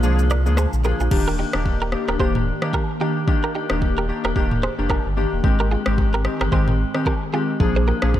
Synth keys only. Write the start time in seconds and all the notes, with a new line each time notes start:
0.03 F3 A#3 D4 G#4
0.46 F3 A#3 D4 G#4
0.84 F3 A#3 D4 G#4
1.11 D#3 A#3 D4 G4
1.54 D#3 A#3 D4 G4
1.92 D#3 A#3 D4 G4
2.19 D#3 A#3 D4 G4
2.62 D#3 A#3 D4 G4
3.00 D#3 A#3 D4 G4
3.27 D#3 A#3 D4 G4
3.70 D#3 A#3 D4 G4
4.08 D#3 A#3 D4 G4
4.35 D#3 A#3 D4 G4
4.78 D#3 A#3 D4 G4
5.17 D#3 A#3 D4 G4
5.44 D#3 G#3 C4 G4
5.86 D#3 G#3 C4 G4
6.25 D#3 G#3 C4 G4
6.52 D#3 G#3 C4 G4
6.94 D#3 G#3 C4 G4
7.33 D#3 G#3 C4 G4
7.60 F3 A#3 D4 G#4
8.02 F3 A#3 D4 G#4